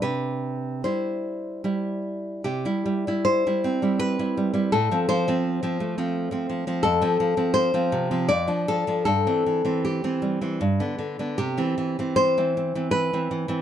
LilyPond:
\new Staff \with { instrumentName = "Nylon-string guitar" } { \clef bass \time 3/4 \key c \major \tempo 4 = 79 << { b'4 c''4. r8 | g'4 c''4 b'4 | a'8 c''2 r8 | a'4 c''4 d''8 a'8 |
a'4 g'4. r8 | g'4 c''4 b'4 | } \\ { c4 <g e'>4 <g e'>4 | c16 <g e'>16 g16 <g e'>8 <g e'>16 c'16 <g e'>8 <g e'>16 g16 <g e'>16 | a,16 <f c'>16 f16 <f c'>8 <f c'>16 a16 <f c'>8 <f c'>16 f16 <f c'>16 | f,16 <f c'>16 f16 <f c'>8 <f c'>16 c16 <f c'>16 f,16 <f d'>16 f16 <f d'>16 |
g,16 <e c'>16 e16 <e c'>8 <e c'>16 g16 <e c'>16 g,16 <d b>16 d16 <d b>16 | c16 <e c'>16 e16 <e c'>8 <e c'>16 c'16 <e c'>8 <e c'>16 e16 <e c'>16 | } >> }